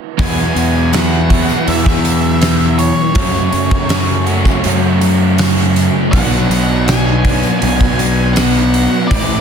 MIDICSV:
0, 0, Header, 1, 7, 480
1, 0, Start_track
1, 0, Tempo, 743494
1, 124, Time_signature, 4, 2, 24, 8
1, 6074, End_track
2, 0, Start_track
2, 0, Title_t, "Lead electric guitar"
2, 0, Program_c, 0, 29
2, 135, Note_on_c, 0, 80, 92
2, 600, Note_off_c, 0, 80, 0
2, 602, Note_on_c, 0, 78, 90
2, 1088, Note_on_c, 0, 76, 94
2, 1097, Note_off_c, 0, 78, 0
2, 1797, Note_off_c, 0, 76, 0
2, 1800, Note_on_c, 0, 73, 74
2, 2735, Note_off_c, 0, 73, 0
2, 3951, Note_on_c, 0, 78, 85
2, 4428, Note_off_c, 0, 78, 0
2, 4431, Note_on_c, 0, 80, 109
2, 4895, Note_off_c, 0, 80, 0
2, 4902, Note_on_c, 0, 80, 102
2, 5377, Note_off_c, 0, 80, 0
2, 5380, Note_on_c, 0, 78, 93
2, 5860, Note_on_c, 0, 74, 90
2, 5887, Note_off_c, 0, 78, 0
2, 6074, Note_off_c, 0, 74, 0
2, 6074, End_track
3, 0, Start_track
3, 0, Title_t, "Overdriven electric guitar"
3, 0, Program_c, 1, 29
3, 112, Note_on_c, 1, 40, 88
3, 115, Note_on_c, 1, 47, 94
3, 122, Note_on_c, 1, 52, 88
3, 123, Note_on_c, 1, 59, 113
3, 128, Note_on_c, 1, 64, 100
3, 134, Note_on_c, 1, 66, 117
3, 585, Note_off_c, 1, 52, 0
3, 593, Note_off_c, 1, 59, 0
3, 593, Note_on_c, 1, 52, 68
3, 598, Note_off_c, 1, 64, 0
3, 601, Note_on_c, 1, 59, 80
3, 606, Note_on_c, 1, 64, 75
3, 609, Note_off_c, 1, 66, 0
3, 612, Note_on_c, 1, 66, 83
3, 832, Note_off_c, 1, 66, 0
3, 835, Note_off_c, 1, 64, 0
3, 835, Note_on_c, 1, 66, 72
3, 837, Note_off_c, 1, 40, 0
3, 839, Note_off_c, 1, 47, 0
3, 839, Note_off_c, 1, 59, 0
3, 843, Note_on_c, 1, 64, 64
3, 844, Note_off_c, 1, 52, 0
3, 847, Note_on_c, 1, 59, 66
3, 852, Note_on_c, 1, 52, 60
3, 1078, Note_off_c, 1, 52, 0
3, 1080, Note_on_c, 1, 40, 86
3, 1082, Note_off_c, 1, 59, 0
3, 1085, Note_on_c, 1, 47, 94
3, 1086, Note_off_c, 1, 64, 0
3, 1086, Note_on_c, 1, 52, 104
3, 1090, Note_on_c, 1, 59, 101
3, 1094, Note_off_c, 1, 66, 0
3, 1094, Note_on_c, 1, 64, 101
3, 1096, Note_on_c, 1, 66, 110
3, 1545, Note_off_c, 1, 52, 0
3, 1552, Note_off_c, 1, 59, 0
3, 1553, Note_on_c, 1, 52, 75
3, 1560, Note_on_c, 1, 59, 70
3, 1561, Note_off_c, 1, 64, 0
3, 1569, Note_off_c, 1, 66, 0
3, 1569, Note_on_c, 1, 64, 82
3, 1572, Note_on_c, 1, 66, 80
3, 1801, Note_off_c, 1, 40, 0
3, 1803, Note_off_c, 1, 47, 0
3, 2023, Note_off_c, 1, 52, 0
3, 2027, Note_off_c, 1, 59, 0
3, 2031, Note_off_c, 1, 64, 0
3, 2031, Note_on_c, 1, 42, 97
3, 2037, Note_on_c, 1, 49, 100
3, 2041, Note_on_c, 1, 54, 101
3, 2044, Note_on_c, 1, 57, 95
3, 2047, Note_off_c, 1, 66, 0
3, 2047, Note_on_c, 1, 61, 103
3, 2050, Note_on_c, 1, 66, 106
3, 2505, Note_off_c, 1, 54, 0
3, 2507, Note_off_c, 1, 57, 0
3, 2508, Note_on_c, 1, 54, 80
3, 2515, Note_on_c, 1, 57, 66
3, 2516, Note_off_c, 1, 61, 0
3, 2519, Note_on_c, 1, 61, 80
3, 2524, Note_off_c, 1, 66, 0
3, 2526, Note_on_c, 1, 66, 70
3, 2746, Note_off_c, 1, 66, 0
3, 2749, Note_on_c, 1, 66, 73
3, 2756, Note_off_c, 1, 57, 0
3, 2756, Note_off_c, 1, 61, 0
3, 2757, Note_off_c, 1, 42, 0
3, 2759, Note_on_c, 1, 61, 70
3, 2760, Note_off_c, 1, 49, 0
3, 2763, Note_on_c, 1, 57, 66
3, 2765, Note_off_c, 1, 54, 0
3, 2768, Note_on_c, 1, 54, 65
3, 2993, Note_on_c, 1, 42, 87
3, 2994, Note_on_c, 1, 49, 101
3, 2995, Note_off_c, 1, 54, 0
3, 2998, Note_off_c, 1, 57, 0
3, 2999, Note_off_c, 1, 61, 0
3, 3002, Note_on_c, 1, 54, 96
3, 3003, Note_off_c, 1, 66, 0
3, 3006, Note_on_c, 1, 57, 98
3, 3007, Note_on_c, 1, 61, 113
3, 3011, Note_on_c, 1, 66, 93
3, 3468, Note_off_c, 1, 54, 0
3, 3475, Note_off_c, 1, 57, 0
3, 3476, Note_on_c, 1, 54, 77
3, 3482, Note_on_c, 1, 57, 77
3, 3483, Note_off_c, 1, 61, 0
3, 3485, Note_off_c, 1, 66, 0
3, 3491, Note_on_c, 1, 61, 74
3, 3493, Note_on_c, 1, 66, 84
3, 3718, Note_off_c, 1, 42, 0
3, 3719, Note_off_c, 1, 49, 0
3, 3945, Note_off_c, 1, 54, 0
3, 3948, Note_off_c, 1, 57, 0
3, 3953, Note_off_c, 1, 61, 0
3, 3954, Note_off_c, 1, 66, 0
3, 3955, Note_on_c, 1, 47, 100
3, 3960, Note_on_c, 1, 54, 92
3, 3963, Note_on_c, 1, 59, 101
3, 3969, Note_on_c, 1, 62, 105
3, 3972, Note_on_c, 1, 66, 124
3, 4421, Note_off_c, 1, 54, 0
3, 4428, Note_off_c, 1, 59, 0
3, 4429, Note_on_c, 1, 54, 63
3, 4433, Note_off_c, 1, 62, 0
3, 4436, Note_on_c, 1, 59, 72
3, 4440, Note_off_c, 1, 66, 0
3, 4440, Note_on_c, 1, 62, 76
3, 4448, Note_on_c, 1, 66, 87
3, 4661, Note_off_c, 1, 66, 0
3, 4669, Note_on_c, 1, 66, 70
3, 4671, Note_off_c, 1, 62, 0
3, 4679, Note_on_c, 1, 62, 74
3, 4680, Note_off_c, 1, 47, 0
3, 4681, Note_off_c, 1, 59, 0
3, 4688, Note_on_c, 1, 59, 62
3, 4903, Note_off_c, 1, 54, 0
3, 4908, Note_on_c, 1, 47, 92
3, 4910, Note_off_c, 1, 59, 0
3, 4911, Note_on_c, 1, 54, 105
3, 4916, Note_off_c, 1, 62, 0
3, 4918, Note_on_c, 1, 59, 95
3, 4921, Note_off_c, 1, 66, 0
3, 4923, Note_on_c, 1, 62, 88
3, 4929, Note_on_c, 1, 66, 115
3, 5386, Note_off_c, 1, 54, 0
3, 5391, Note_off_c, 1, 59, 0
3, 5394, Note_on_c, 1, 54, 80
3, 5396, Note_off_c, 1, 62, 0
3, 5398, Note_on_c, 1, 59, 84
3, 5403, Note_off_c, 1, 66, 0
3, 5404, Note_on_c, 1, 62, 70
3, 5411, Note_on_c, 1, 66, 85
3, 5637, Note_off_c, 1, 47, 0
3, 5865, Note_off_c, 1, 54, 0
3, 5868, Note_off_c, 1, 59, 0
3, 5870, Note_off_c, 1, 62, 0
3, 5874, Note_off_c, 1, 66, 0
3, 5876, Note_on_c, 1, 45, 93
3, 5880, Note_on_c, 1, 52, 105
3, 5885, Note_on_c, 1, 57, 95
3, 5889, Note_on_c, 1, 60, 104
3, 5895, Note_on_c, 1, 64, 112
3, 6074, Note_off_c, 1, 45, 0
3, 6074, Note_off_c, 1, 52, 0
3, 6074, Note_off_c, 1, 57, 0
3, 6074, Note_off_c, 1, 60, 0
3, 6074, Note_off_c, 1, 64, 0
3, 6074, End_track
4, 0, Start_track
4, 0, Title_t, "Overdriven electric guitar"
4, 0, Program_c, 2, 29
4, 126, Note_on_c, 2, 54, 88
4, 848, Note_off_c, 2, 54, 0
4, 850, Note_on_c, 2, 54, 69
4, 2046, Note_off_c, 2, 54, 0
4, 2772, Note_on_c, 2, 49, 70
4, 2776, Note_on_c, 2, 42, 59
4, 3953, Note_off_c, 2, 49, 0
4, 3955, Note_off_c, 2, 42, 0
4, 4690, Note_on_c, 2, 54, 82
4, 4697, Note_on_c, 2, 47, 62
4, 5874, Note_off_c, 2, 54, 0
4, 5877, Note_off_c, 2, 47, 0
4, 6074, End_track
5, 0, Start_track
5, 0, Title_t, "Distorted electric guitar"
5, 0, Program_c, 3, 30
5, 595, Note_on_c, 3, 40, 78
5, 603, Note_on_c, 3, 47, 84
5, 1070, Note_off_c, 3, 40, 0
5, 1081, Note_off_c, 3, 47, 0
5, 1319, Note_on_c, 3, 52, 72
5, 1335, Note_on_c, 3, 47, 57
5, 1558, Note_on_c, 3, 40, 83
5, 1561, Note_off_c, 3, 47, 0
5, 1569, Note_off_c, 3, 52, 0
5, 1569, Note_on_c, 3, 47, 84
5, 2026, Note_off_c, 3, 40, 0
5, 2031, Note_off_c, 3, 47, 0
5, 2512, Note_on_c, 3, 42, 79
5, 2521, Note_on_c, 3, 49, 86
5, 2991, Note_off_c, 3, 42, 0
5, 2998, Note_off_c, 3, 49, 0
5, 3235, Note_on_c, 3, 54, 74
5, 3253, Note_on_c, 3, 49, 57
5, 3475, Note_on_c, 3, 42, 72
5, 3478, Note_off_c, 3, 49, 0
5, 3484, Note_off_c, 3, 54, 0
5, 3485, Note_on_c, 3, 49, 84
5, 3945, Note_off_c, 3, 42, 0
5, 3950, Note_off_c, 3, 49, 0
5, 4441, Note_on_c, 3, 47, 81
5, 4907, Note_off_c, 3, 47, 0
5, 5161, Note_on_c, 3, 59, 73
5, 5177, Note_on_c, 3, 54, 61
5, 5396, Note_on_c, 3, 47, 76
5, 5398, Note_off_c, 3, 54, 0
5, 5407, Note_off_c, 3, 59, 0
5, 5866, Note_off_c, 3, 47, 0
5, 6074, End_track
6, 0, Start_track
6, 0, Title_t, "Picked electric bass"
6, 0, Program_c, 4, 34
6, 123, Note_on_c, 4, 40, 98
6, 322, Note_off_c, 4, 40, 0
6, 360, Note_on_c, 4, 40, 87
6, 957, Note_off_c, 4, 40, 0
6, 1084, Note_on_c, 4, 40, 98
6, 1878, Note_off_c, 4, 40, 0
6, 2037, Note_on_c, 4, 42, 109
6, 2238, Note_off_c, 4, 42, 0
6, 2279, Note_on_c, 4, 42, 84
6, 2877, Note_off_c, 4, 42, 0
6, 3005, Note_on_c, 4, 42, 111
6, 3799, Note_off_c, 4, 42, 0
6, 3962, Note_on_c, 4, 35, 117
6, 4161, Note_off_c, 4, 35, 0
6, 4195, Note_on_c, 4, 35, 98
6, 4795, Note_off_c, 4, 35, 0
6, 4924, Note_on_c, 4, 35, 110
6, 5720, Note_off_c, 4, 35, 0
6, 5881, Note_on_c, 4, 33, 111
6, 6074, Note_off_c, 4, 33, 0
6, 6074, End_track
7, 0, Start_track
7, 0, Title_t, "Drums"
7, 123, Note_on_c, 9, 36, 120
7, 123, Note_on_c, 9, 46, 83
7, 187, Note_off_c, 9, 46, 0
7, 188, Note_off_c, 9, 36, 0
7, 245, Note_on_c, 9, 54, 27
7, 309, Note_off_c, 9, 54, 0
7, 365, Note_on_c, 9, 46, 63
7, 368, Note_on_c, 9, 54, 63
7, 429, Note_off_c, 9, 46, 0
7, 432, Note_off_c, 9, 54, 0
7, 485, Note_on_c, 9, 54, 25
7, 549, Note_off_c, 9, 54, 0
7, 598, Note_on_c, 9, 54, 68
7, 603, Note_on_c, 9, 46, 90
7, 609, Note_on_c, 9, 38, 117
7, 663, Note_off_c, 9, 54, 0
7, 668, Note_off_c, 9, 46, 0
7, 674, Note_off_c, 9, 38, 0
7, 841, Note_on_c, 9, 46, 61
7, 842, Note_on_c, 9, 36, 79
7, 845, Note_on_c, 9, 54, 30
7, 905, Note_off_c, 9, 46, 0
7, 906, Note_off_c, 9, 36, 0
7, 909, Note_off_c, 9, 54, 0
7, 961, Note_on_c, 9, 54, 73
7, 1026, Note_off_c, 9, 54, 0
7, 1082, Note_on_c, 9, 46, 79
7, 1091, Note_on_c, 9, 54, 27
7, 1147, Note_off_c, 9, 46, 0
7, 1156, Note_off_c, 9, 54, 0
7, 1202, Note_on_c, 9, 36, 86
7, 1208, Note_on_c, 9, 38, 33
7, 1266, Note_off_c, 9, 36, 0
7, 1273, Note_off_c, 9, 38, 0
7, 1323, Note_on_c, 9, 46, 70
7, 1327, Note_on_c, 9, 54, 77
7, 1387, Note_off_c, 9, 46, 0
7, 1392, Note_off_c, 9, 54, 0
7, 1560, Note_on_c, 9, 46, 86
7, 1566, Note_on_c, 9, 38, 112
7, 1569, Note_on_c, 9, 54, 106
7, 1624, Note_off_c, 9, 46, 0
7, 1631, Note_off_c, 9, 38, 0
7, 1633, Note_off_c, 9, 54, 0
7, 1692, Note_on_c, 9, 54, 29
7, 1757, Note_off_c, 9, 54, 0
7, 1799, Note_on_c, 9, 46, 61
7, 1805, Note_on_c, 9, 54, 79
7, 1864, Note_off_c, 9, 46, 0
7, 1870, Note_off_c, 9, 54, 0
7, 2034, Note_on_c, 9, 46, 79
7, 2038, Note_on_c, 9, 36, 123
7, 2099, Note_off_c, 9, 46, 0
7, 2102, Note_off_c, 9, 36, 0
7, 2162, Note_on_c, 9, 54, 26
7, 2227, Note_off_c, 9, 54, 0
7, 2276, Note_on_c, 9, 46, 59
7, 2281, Note_on_c, 9, 54, 76
7, 2340, Note_off_c, 9, 46, 0
7, 2346, Note_off_c, 9, 54, 0
7, 2397, Note_on_c, 9, 36, 94
7, 2400, Note_on_c, 9, 54, 29
7, 2462, Note_off_c, 9, 36, 0
7, 2465, Note_off_c, 9, 54, 0
7, 2513, Note_on_c, 9, 46, 72
7, 2520, Note_on_c, 9, 38, 108
7, 2520, Note_on_c, 9, 54, 86
7, 2578, Note_off_c, 9, 46, 0
7, 2584, Note_off_c, 9, 38, 0
7, 2585, Note_off_c, 9, 54, 0
7, 2754, Note_on_c, 9, 46, 52
7, 2761, Note_on_c, 9, 54, 29
7, 2819, Note_off_c, 9, 46, 0
7, 2825, Note_off_c, 9, 54, 0
7, 2876, Note_on_c, 9, 36, 74
7, 2884, Note_on_c, 9, 54, 80
7, 2940, Note_off_c, 9, 36, 0
7, 2948, Note_off_c, 9, 54, 0
7, 2995, Note_on_c, 9, 46, 76
7, 2999, Note_on_c, 9, 54, 29
7, 3059, Note_off_c, 9, 46, 0
7, 3063, Note_off_c, 9, 54, 0
7, 3237, Note_on_c, 9, 46, 57
7, 3239, Note_on_c, 9, 54, 70
7, 3302, Note_off_c, 9, 46, 0
7, 3304, Note_off_c, 9, 54, 0
7, 3476, Note_on_c, 9, 46, 87
7, 3477, Note_on_c, 9, 54, 100
7, 3482, Note_on_c, 9, 38, 114
7, 3540, Note_off_c, 9, 46, 0
7, 3542, Note_off_c, 9, 54, 0
7, 3547, Note_off_c, 9, 38, 0
7, 3603, Note_on_c, 9, 54, 29
7, 3668, Note_off_c, 9, 54, 0
7, 3720, Note_on_c, 9, 46, 63
7, 3722, Note_on_c, 9, 54, 72
7, 3785, Note_off_c, 9, 46, 0
7, 3787, Note_off_c, 9, 54, 0
7, 3958, Note_on_c, 9, 36, 114
7, 3959, Note_on_c, 9, 46, 83
7, 4023, Note_off_c, 9, 36, 0
7, 4024, Note_off_c, 9, 46, 0
7, 4080, Note_on_c, 9, 54, 28
7, 4145, Note_off_c, 9, 54, 0
7, 4203, Note_on_c, 9, 46, 62
7, 4204, Note_on_c, 9, 54, 66
7, 4268, Note_off_c, 9, 46, 0
7, 4268, Note_off_c, 9, 54, 0
7, 4329, Note_on_c, 9, 54, 28
7, 4394, Note_off_c, 9, 54, 0
7, 4441, Note_on_c, 9, 46, 77
7, 4445, Note_on_c, 9, 54, 88
7, 4447, Note_on_c, 9, 38, 116
7, 4506, Note_off_c, 9, 46, 0
7, 4510, Note_off_c, 9, 54, 0
7, 4512, Note_off_c, 9, 38, 0
7, 4679, Note_on_c, 9, 36, 79
7, 4681, Note_on_c, 9, 46, 60
7, 4685, Note_on_c, 9, 54, 28
7, 4743, Note_off_c, 9, 36, 0
7, 4745, Note_off_c, 9, 46, 0
7, 4750, Note_off_c, 9, 54, 0
7, 4799, Note_on_c, 9, 54, 76
7, 4863, Note_off_c, 9, 54, 0
7, 4919, Note_on_c, 9, 46, 81
7, 4924, Note_on_c, 9, 54, 26
7, 4984, Note_off_c, 9, 46, 0
7, 4988, Note_off_c, 9, 54, 0
7, 5040, Note_on_c, 9, 36, 81
7, 5104, Note_off_c, 9, 36, 0
7, 5160, Note_on_c, 9, 46, 70
7, 5165, Note_on_c, 9, 54, 73
7, 5224, Note_off_c, 9, 46, 0
7, 5230, Note_off_c, 9, 54, 0
7, 5397, Note_on_c, 9, 46, 88
7, 5400, Note_on_c, 9, 54, 108
7, 5404, Note_on_c, 9, 38, 107
7, 5462, Note_off_c, 9, 46, 0
7, 5464, Note_off_c, 9, 54, 0
7, 5468, Note_off_c, 9, 38, 0
7, 5523, Note_on_c, 9, 54, 29
7, 5588, Note_off_c, 9, 54, 0
7, 5642, Note_on_c, 9, 46, 56
7, 5644, Note_on_c, 9, 54, 73
7, 5706, Note_off_c, 9, 46, 0
7, 5708, Note_off_c, 9, 54, 0
7, 5881, Note_on_c, 9, 36, 110
7, 5882, Note_on_c, 9, 46, 85
7, 5884, Note_on_c, 9, 54, 31
7, 5946, Note_off_c, 9, 36, 0
7, 5946, Note_off_c, 9, 46, 0
7, 5949, Note_off_c, 9, 54, 0
7, 6008, Note_on_c, 9, 54, 27
7, 6072, Note_off_c, 9, 54, 0
7, 6074, End_track
0, 0, End_of_file